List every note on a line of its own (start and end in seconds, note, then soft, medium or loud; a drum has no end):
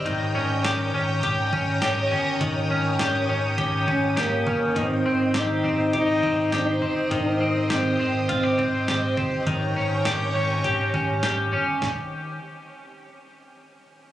0.00 0.11 C4 soft
0.00 0.38 G4 medium
0.00 9.43 G5 medium
0.06 0.32 G#1 medium
0.06 2.41 D#3 medium
0.06 4.73 C#5 medium
0.06 4.73 A#5 medium
0.06 11.79 D#6 loud
0.06 kick medium
0.06 closed hi-hat medium
0.35 0.61 G#1 medium
0.35 0.93 C#4 medium
0.64 0.90 G#1 medium
0.64 1.23 G4 medium
0.64 snare loud
0.64 closed hi-hat medium
0.94 1.20 G#1 medium
0.94 1.52 C#4 medium
1.23 1.49 G#1 medium
1.23 1.82 G4 medium
1.23 kick medium
1.23 closed hi-hat medium
1.53 1.79 G#1 medium
1.53 2.10 C#4 soft
1.53 kick medium
1.82 2.08 G#1 medium
1.82 2.99 G4 medium
1.82 snare loud
1.82 closed hi-hat medium
2.11 2.37 G1 medium
2.11 2.69 C#4 medium
2.41 2.67 G#1 loud
2.41 4.76 D#3 medium
2.41 kick loud
2.41 closed hi-hat medium
2.70 2.96 G#1 medium
2.70 3.28 C#4 medium
2.99 3.26 G#1 medium
2.99 3.57 G4 medium
2.99 snare loud
2.99 closed hi-hat medium
3.29 3.55 G#1 medium
3.29 3.86 C#4 medium
3.58 3.84 G#1 medium
3.58 4.16 G4 medium
3.58 kick medium
3.58 closed hi-hat medium
3.87 4.14 G#1 medium
3.87 4.46 C#4 medium
3.87 4.21 C#4 medium
3.87 kick medium
4.17 4.43 G#1 medium
4.17 4.77 A#3 medium
4.17 5.35 G4 medium
4.17 snare loud
4.17 closed hi-hat medium
4.47 4.73 G1 medium
4.47 4.82 C#4 medium
4.47 kick medium
4.76 5.02 G#1 medium
4.76 7.11 D#3 medium
4.76 5.40 C4 medium
4.76 9.43 C5 medium
4.76 9.43 D#5 medium
4.76 kick loud
4.76 closed hi-hat medium
5.06 5.63 C4 medium
5.34 5.61 G#1 medium
5.34 5.93 G4 medium
5.34 snare loud
5.34 closed hi-hat medium
5.39 5.96 D#4 medium
5.64 5.90 G#1 medium
5.64 6.22 C4 medium
5.93 6.20 G#1 medium
5.93 6.50 D#4 loud
5.93 6.52 G4 medium
5.93 kick medium
5.93 closed hi-hat medium
6.23 6.49 G#1 medium
6.23 6.81 C4 medium
6.23 kick medium
6.52 6.79 G#1 medium
6.52 7.09 D#4 medium
6.52 7.70 G4 medium
6.52 snare loud
6.52 closed hi-hat medium
6.82 7.08 G1 medium
6.82 7.39 C4 soft
7.11 7.37 G#1 medium
7.11 9.46 D#3 medium
7.11 7.75 D#4 medium
7.11 kick loud
7.11 closed hi-hat medium
7.41 7.67 G#1 medium
7.41 7.98 C4 medium
7.70 7.96 G#1 medium
7.70 8.31 C4 medium
7.70 8.29 G4 medium
7.70 snare loud
7.70 closed hi-hat medium
8.00 8.26 G#1 medium
8.00 8.57 C4 medium
8.29 8.55 G#1 medium
8.29 8.86 C4 medium
8.29 8.43 F4 medium
8.29 kick medium
8.29 closed hi-hat medium
8.43 8.87 G4 soft
8.58 8.85 G#1 medium
8.58 9.16 C4 medium
8.58 kick medium
8.88 9.14 G#1 medium
8.88 9.79 G4 medium
8.88 snare loud
8.88 closed hi-hat medium
9.17 9.43 G1 medium
9.17 9.53 C4 medium
9.17 kick loud
9.46 9.73 G#1 medium
9.46 12.38 D#3 medium
9.46 11.79 C#5 medium
9.46 11.80 G5 medium
9.46 11.80 A#5 medium
9.46 kick loud
9.46 closed hi-hat medium
9.76 10.02 G#1 medium
9.76 10.34 C#4 medium
10.05 10.31 G#1 loud
10.05 10.64 G4 medium
10.05 snare loud
10.05 closed hi-hat medium
10.35 10.61 G#1 medium
10.35 10.93 C#4 medium
10.64 10.90 G#1 medium
10.64 11.23 G4 medium
10.64 kick medium
10.64 closed hi-hat medium
10.94 11.20 G#1 medium
10.94 11.52 C#4 medium
10.94 kick medium
11.23 12.38 G4 medium
11.23 snare loud
11.23 closed hi-hat medium
11.52 11.78 G1 medium
11.52 11.88 C#4 medium
11.82 kick medium
11.82 snare medium